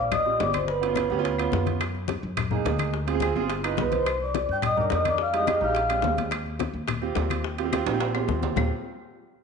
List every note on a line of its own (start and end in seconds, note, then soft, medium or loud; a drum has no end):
0.00 0.37 A#1 medium
0.00 0.06 D5 medium
0.11 0.39 D#5 loud
0.11 0.38 D#6 medium
0.11 high bongo medium
0.11 high conga soft
0.11 low conga medium
0.11 high timbale loud
0.11 claves medium
0.25 0.65 C4 medium
0.25 0.65 F4 medium
0.25 0.65 G4 medium
0.25 high conga soft
0.40 1.05 G1 medium
0.40 0.54 D5 medium
0.40 0.53 D6 medium
0.40 high bongo medium
0.40 low bongo medium
0.40 high conga soft
0.40 high timbale medium
0.40 low timbale medium
0.53 0.61 C5 medium
0.53 0.60 C6 medium
0.53 high conga medium
0.53 high timbale medium
0.53 claves medium
0.67 1.63 B4 medium
0.67 1.62 B5 medium
0.67 high bongo medium
0.67 high conga soft
0.81 0.87 B3 medium
0.81 0.87 C#4 medium
0.81 0.87 F4 medium
0.81 high conga soft
0.81 high timbale medium
0.88 0.94 B3 medium
0.88 0.94 C#4 medium
0.88 0.94 F4 medium
0.96 1.06 B3 medium
0.96 1.06 C#4 medium
0.96 1.07 F4 medium
0.96 high bongo medium
0.96 high conga medium
0.96 high timbale medium
0.96 low timbale medium
0.96 claves medium
1.10 1.49 D2 medium
1.10 1.15 B3 medium
1.10 1.16 C#4 medium
1.10 1.16 G4 loud
1.10 high bongo soft
1.18 1.32 B3 medium
1.18 1.33 C#4 medium
1.18 1.33 F4 loud
1.25 high bongo medium
1.25 high conga soft
1.25 high timbale medium
1.38 1.78 B3 medium
1.38 1.78 C#4 medium
1.38 1.78 F4 medium
1.38 high bongo soft
1.38 high conga soft
1.38 high timbale medium
1.38 claves medium
1.52 2.18 F#2 medium
1.52 high bongo medium
1.52 low bongo medium
1.52 high conga medium
1.52 low timbale medium
1.66 high bongo soft
1.66 high conga medium
1.66 high timbale medium
1.80 high bongo medium
1.80 high conga soft
1.80 high timbale medium
1.80 claves medium
1.95 high conga soft
2.08 high bongo medium
2.08 high conga medium
2.08 high timbale medium
2.08 low timbale medium
2.23 2.62 F#2 medium
2.23 high conga soft
2.37 high bongo medium
2.37 high conga soft
2.37 low conga medium
2.37 high timbale loud
2.37 claves medium
2.51 2.90 A#3 medium
2.51 2.91 D#4 medium
2.51 2.91 G#4 medium
2.51 high conga soft
2.51 low conga medium
2.65 3.30 D2 medium
2.65 high bongo medium
2.65 low bongo medium
2.65 high timbale medium
2.65 low timbale medium
2.79 high conga medium
2.79 high timbale medium
2.79 claves medium
2.93 high bongo medium
2.93 high conga soft
3.07 3.12 C4 medium
3.07 3.12 F4 medium
3.07 3.13 G#4 loud
3.07 high conga soft
3.07 high timbale medium
3.14 3.19 C4 medium
3.14 3.19 F4 medium
3.14 3.20 G#4 loud
3.20 3.31 C4 medium
3.20 3.32 F4 medium
3.20 3.32 G#4 loud
3.20 high bongo medium
3.20 high conga medium
3.20 high timbale medium
3.20 low timbale medium
3.20 claves medium
3.35 3.75 G1 medium
3.35 3.40 C4 medium
3.35 3.41 F4 medium
3.35 3.41 G#4 loud
3.35 high bongo soft
3.42 3.49 C4 medium
3.42 3.50 F4 medium
3.42 3.50 G#4 loud
3.49 high bongo medium
3.49 high conga soft
3.49 high timbale medium
3.64 4.03 D#4 medium
3.64 4.04 F4 medium
3.64 4.04 B4 medium
3.64 high bongo soft
3.64 high conga soft
3.64 high timbale medium
3.64 claves medium
3.77 4.43 C2 medium
3.77 3.85 B5 medium
3.77 high bongo medium
3.77 low bongo medium
3.77 high conga medium
3.77 low timbale medium
3.81 3.85 B4 medium
3.86 3.88 B4 medium
3.86 3.88 B5 medium
3.86 3.97 C6 medium
3.90 3.97 C5 medium
3.90 high bongo soft
3.90 high conga medium
3.90 high timbale medium
3.98 4.20 C5 medium
3.98 4.19 C6 medium
4.06 high bongo medium
4.06 high conga soft
4.06 high timbale medium
4.06 claves medium
4.20 4.35 D5 medium
4.20 4.34 D6 medium
4.20 high conga soft
4.34 4.43 D5 medium
4.34 4.42 D6 medium
4.34 high bongo medium
4.34 high conga loud
4.34 high timbale medium
4.34 low timbale medium
4.49 4.88 G2 medium
4.49 4.58 G5 loud
4.49 4.57 G6 medium
4.49 high conga soft
4.62 4.79 D#5 loud
4.62 4.77 D#6 medium
4.62 high bongo medium
4.62 high conga soft
4.62 low conga medium
4.62 high timbale loud
4.62 claves medium
4.76 5.16 D4 medium
4.76 5.16 D#4 medium
4.76 5.16 A#4 medium
4.76 4.86 D5 medium
4.76 4.85 D6 medium
4.76 high conga soft
4.76 low conga medium
4.90 5.56 F2 medium
4.90 5.05 D#6 medium
4.90 high bongo medium
4.90 low bongo medium
4.90 high conga soft
4.90 high timbale medium
4.90 low timbale medium
4.94 5.06 D#5 medium
5.05 5.20 D5 medium
5.05 5.20 D6 medium
5.05 high conga medium
5.05 high timbale medium
5.05 claves medium
5.18 5.35 F5 loud
5.18 5.33 F6 medium
5.18 high bongo medium
5.18 high conga soft
5.33 5.38 G#3 medium
5.33 5.38 D#4 medium
5.33 5.38 G4 medium
5.33 5.49 D#5 medium
5.33 5.48 D#6 medium
5.33 high conga soft
5.33 high timbale medium
5.40 5.45 G#3 medium
5.40 5.45 D#4 medium
5.40 5.45 G4 medium
5.47 5.57 G#3 medium
5.47 5.57 D#4 medium
5.47 5.57 G4 medium
5.47 5.56 D#5 medium
5.47 5.55 D#6 medium
5.47 high bongo medium
5.47 high conga medium
5.47 high timbale medium
5.47 low timbale medium
5.47 claves medium
5.61 6.00 A#1 medium
5.61 5.66 G#3 medium
5.61 5.66 D#4 medium
5.61 5.66 G4 medium
5.61 6.15 F5 medium
5.61 6.15 F6 medium
5.61 high bongo soft
5.68 5.75 G#3 medium
5.68 5.76 D#4 medium
5.68 5.76 G4 medium
5.75 high bongo medium
5.75 high conga soft
5.75 high timbale medium
5.89 6.29 G#3 medium
5.89 6.29 C4 medium
5.89 6.29 D4 medium
5.89 6.29 G4 medium
5.89 high bongo soft
5.89 high conga soft
5.89 high timbale medium
5.89 claves medium
6.02 6.68 D#2 medium
6.02 high bongo medium
6.02 low bongo medium
6.02 high conga medium
6.02 low timbale medium
6.17 high bongo soft
6.17 high conga medium
6.17 high timbale medium
6.31 high bongo medium
6.31 high conga soft
6.31 high timbale medium
6.31 claves medium
6.46 high conga soft
6.59 high bongo medium
6.59 high conga loud
6.59 high timbale medium
6.59 low timbale medium
6.73 7.13 D#2 medium
6.73 high conga soft
6.88 high bongo medium
6.88 high conga soft
6.88 low conga medium
6.88 high timbale loud
6.88 claves medium
7.02 7.41 C4 medium
7.02 7.42 F4 medium
7.02 7.42 G4 medium
7.02 high conga soft
7.15 7.81 D#2 medium
7.15 high bongo medium
7.15 low bongo medium
7.15 high conga soft
7.15 high timbale medium
7.15 low timbale medium
7.30 high conga medium
7.30 high timbale medium
7.30 claves medium
7.44 high bongo medium
7.44 high conga soft
7.58 7.63 C4 medium
7.58 7.64 F4 medium
7.58 7.64 G4 medium
7.58 high conga soft
7.58 high timbale medium
7.64 7.70 C4 medium
7.64 7.70 F4 medium
7.64 7.71 G4 medium
7.72 7.82 C4 medium
7.72 7.83 F4 medium
7.72 7.83 G4 loud
7.72 high bongo medium
7.72 high conga loud
7.72 high timbale medium
7.72 low timbale medium
7.72 claves medium
7.86 8.26 A#1 medium
7.86 7.91 C4 medium
7.86 7.91 F4 medium
7.86 7.92 G4 loud
7.86 high timbale medium
7.93 8.08 C4 medium
7.93 8.09 F4 medium
7.93 8.09 G4 loud
8.00 high bongo medium
8.00 high conga soft
8.00 high timbale loud
8.14 8.54 C4 medium
8.14 8.54 F4 medium
8.14 8.54 G4 medium
8.14 high bongo soft
8.14 high conga soft
8.14 low timbale medium
8.14 claves medium
8.28 8.53 D#2 medium
8.28 high bongo medium
8.28 low bongo medium
8.28 high conga medium
8.43 high bongo soft
8.43 high conga medium
8.43 low timbale loud
8.56 8.70 D#2 medium
8.56 8.70 C4 medium
8.56 8.70 F4 medium
8.56 8.70 G4 medium
8.56 low bongo loud
8.56 low conga loud
8.56 low timbale loud
8.56 claves loud